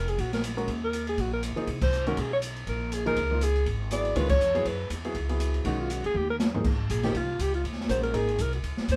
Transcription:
Already playing: upright bass F1, alto saxophone A#4
0.08 alto saxophone G#4, ride
0.18 upright bass A#1, alto saxophone F#4, kick, ride
0.33 alto saxophone A#4, snare, ride
0.44 hi-hat pedal, ride
0.57 grand piano G#3 C#4 F#4 A#4, ride
0.68 upright bass D#2, kick, ride
0.84 alto saxophone A#4
0.93 hi-hat pedal, ride
1.07 alto saxophone G#4, ride
1.17 upright bass A#1, alto saxophone F#4, kick, ride
1.33 alto saxophone A#4
1.43 hi-hat pedal, ride
1.56 grand piano F3 A#3 D#4 G#4, ride
1.67 upright bass C2, kick, ride
1.82 alto saxophone C5, kick, crash
1.92 hi-hat pedal
2.07 grand piano D#3 G#3 C#4 F#4, alto saxophone A#4, ride
2.17 upright bass B1, alto saxophone G#4, kick, ride
2.33 alto saxophone C#5
2.42 hi-hat pedal, ride
2.56 ride
2.67 upright bass A#1, alto saxophone A#4, kick, ride
2.92 alto saxophone G#4, hi-hat pedal, ride
3.06 grand piano F3 A#3 D#4 G#4, alto saxophone A#4, ride
3.16 upright bass C#2, kick, ride
3.31 grand piano F3 A#3 D#4 F4
3.41 alto saxophone G#4, hi-hat pedal, ride
3.56 ride
3.66 upright bass G#1, kick, ride
3.91 grand piano F#3 B3 E4 G#4, alto saxophone D5, hi-hat pedal, ride
4.05 ride
4.15 upright bass C#2, grand piano D#3 G#3 C#4 F4, alto saxophone B4, kick, ride
4.29 alto saxophone C#5, kick, crash
4.40 upright bass F2, hi-hat pedal
4.54 grand piano F#3 B3 E4 G#4, ride
4.65 upright bass F#2, alto saxophone B4, kick, ride
4.90 upright bass E2, hi-hat pedal, ride
5.05 grand piano F#3 B3 E4 G#4, ride
5.15 upright bass C#2, kick, ride
5.29 grand piano F#3 B3 E4 G#4, ride
5.40 hi-hat pedal, ride
5.54 ride
5.65 upright bass B1, grand piano D#3 G#3 C#4 F#4, alto saxophone D#4, kick, ride
5.81 alto saxophone F4
5.90 alto saxophone F#4, hi-hat pedal, ride
6.04 upright bass D2, alto saxophone G#4, ride
6.14 upright bass D#2, alto saxophone G4, mid tom
6.30 alto saxophone A#4
6.40 snare, hi-hat pedal
6.54 grand piano G#2 F3 A#3 D#4 G#4, floor tom
6.64 upright bass G#1, kick, crash
6.89 upright bass A#1, alto saxophone G#4, kick, hi-hat pedal, ride
7.03 grand piano F3 A#3 D#4 G4, alto saxophone G4, snare, ride
7.14 upright bass C2, alto saxophone F4, kick, ride
7.39 upright bass C#2, alto saxophone G4, kick, hi-hat pedal, ride
7.54 alto saxophone F4, ride
7.64 upright bass D#2, kick, ride
7.73 snare
7.81 snare
7.89 upright bass A#1, grand piano G#3 C#4 F#4 A#4, alto saxophone C5, kick, hi-hat pedal, ride
8.03 alto saxophone A#4, ride
8.13 upright bass G#1, grand piano A#3 D#4 G#4 A#4, alto saxophone G#4, kick, ride
8.29 ride
8.39 upright bass C2, alto saxophone A#4, kick, hi-hat pedal, ride
8.53 alto saxophone F#4, ride
8.63 upright bass C#2, kick, ride
8.77 muted upright bass stroke, snare
8.88 upright bass D#2, alto saxophone C5, kick, hi-hat pedal, ride

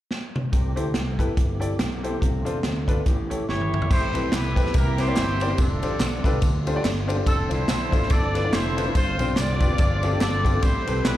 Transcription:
0.11 snare
0.36 mid tom
0.52 fingered electric bass C2, grand piano C3, tonewheel organ E3 A3 C4 G4, kick, closed hi-hat
0.76 fingered electric bass D2, grand piano E4 G4 A4 C5, closed hi-hat
0.94 fingered electric bass C2, snare, closed hi-hat
1.19 fingered electric bass A1, grand piano E4 G4 A4 B4, kick, closed hi-hat
1.37 fingered electric bass G1, kick, closed hi-hat
1.59 grand piano E4 G4 A4 D5, closed hi-hat
1.79 fingered electric bass B1, snare, closed hi-hat
2.03 grand piano E4 G4 A4 C5, closed hi-hat
2.21 fingered electric bass C2, grand piano C3, tonewheel organ D3 C4 F4, kick, closed hi-hat
2.45 fingered electric bass E2, grand piano D4 F4 A4 C5, closed hi-hat
2.63 fingered electric bass D2, snare, closed hi-hat
2.88 grand piano D4 F4 A4 B4, kick, closed hi-hat
3.06 fingered electric bass A1, grand piano A2, tonewheel organ E3 C#4 G4, kick, closed hi-hat
3.30 grand piano E4 G4 A4 C#5, closed hi-hat
3.48 fingered electric bass G1, horn section E4 G4 C#5, grand piano C#5, snare
3.61 high tom
3.74 grand piano E5, mid tom
3.82 floor tom
3.91 fingered electric bass A1, grand piano A2, tonewheel organ G3 A3 C4 A4, horn section E4 G4 C5, kick, crash, tambourine
4.14 fingered electric bass B1, grand piano C4 E4 G4 A4 B4, ride bell, tambourine
4.32 fingered electric bass C2, horn section E4 G4 B4, snare, clap, ride bell, tambourine
4.56 fingered electric bass E2, grand piano C4 E4 G4 A4 B4, kick, ride bell, tambourine
4.66 snare
4.74 fingered electric bass C2, grand piano C3, tonewheel organ E3 A#3 G4, horn section E4 G4 A#4, kick, ride bell, tambourine
4.98 grand piano C4 E4 G4 A#4 C5, horn section E4 G4 C5, snare, ride bell, tambourine
5.08 grand piano C4 E4 G4 A#4 D5
5.16 fingered electric bass G1, snare, clap, ride bell, tambourine
5.40 grand piano C4 E4 G4 A#4 D5, ride bell, tambourine
5.50 grand piano C4 E4 G4 A#4 C5
5.58 fingered electric bass F1, tonewheel organ D3 G3 A3 F4, horn section C4 D4 A4, kick, ride bell, tambourine
5.82 fingered electric bass A1, grand piano D4 F4 G4 A4 C5, ride bell, tambourine
6.00 fingered electric bass B1, snare, clap, ride bell, tambourine
6.24 fingered electric bass C2, grand piano D4 F4 G4 A4 B4, kick, ride bell, tambourine
6.42 fingered electric bass D2, kick, ride bell, tambourine
6.67 grand piano D4 F4 G4 A4 C5, ride bell, tambourine
6.75 grand piano D4 F4 G4 A4 D5
6.84 fingered electric bass G1, snare, clap, ride bell, tambourine
7.07 grand piano D4 F4 G4 A4 C5, ride bell, tambourine
7.16 grand piano D4 F4 G4 A4 C5
7.26 fingered electric bass F1, tonewheel organ F3 C4 E4, horn section C4 D4 A4, kick, ride bell, tambourine
7.49 fingered electric bass C2, grand piano D4 E4 F4 A4 C5, horn section E4 A4 C5, ride bell, tambourine
7.68 fingered electric bass B1, snare, clap, ride bell, tambourine
7.91 fingered electric bass A1, grand piano D4 E4 F4 A4 C5, kick, ride bell, tambourine
8.03 snare
8.10 fingered electric bass G1, horn section A4 D5, kick, ride bell, tambourine
8.34 grand piano D4 E4 F4 A4 B4, snare, ride bell, tambourine
8.43 grand piano D4 E4 F4 A4 D5
8.53 fingered electric bass F1, horn section E4 A4 C5, snare, clap, ride bell, tambourine
8.76 grand piano D4 E4 F4 A4 B4, ride bell, tambourine
8.85 grand piano D4 E4 F4 A4 C5
8.94 fingered electric bass G1, grand piano G2, tonewheel organ G3 F4, horn section F4 C5, kick, ride bell, tambourine
9.19 fingered electric bass B1, grand piano C4 D4 F4 G4 C5, ride bell, tambourine
9.36 fingered electric bass C2, horn section F4 D5, snare, clap, ride bell, tambourine
9.60 fingered electric bass F1, grand piano C4 D4 F4 G4 B4, kick, ride bell, tambourine
9.78 fingered electric bass G1, grand piano G2, tonewheel organ F3 A3 G4, kick, ride bell, tambourine
10.03 grand piano C4 D4 F4 G4 A4, ride bell, tambourine
10.13 grand piano C4 D4 F4 G4 A4
10.21 fingered electric bass G1, horn section F4 A4 D5, snare, clap, ride bell, tambourine
10.44 grand piano C4 D4 F4 G4 A4, kick, ride bell, tambourine
10.53 grand piano C4 D4 F4 G4 A4
10.61 fingered electric bass A1, grand piano A2, tonewheel organ G3 A3 C4 A4, horn section E4 G4 C5, kick, ride bell, tambourine
10.87 fingered electric bass C2, grand piano C4 E4 G4 A4 B4, ride bell, tambourine
11.03 fingered electric bass B1, horn section E4 G4 B4, snare, clap, ride bell, tambourine

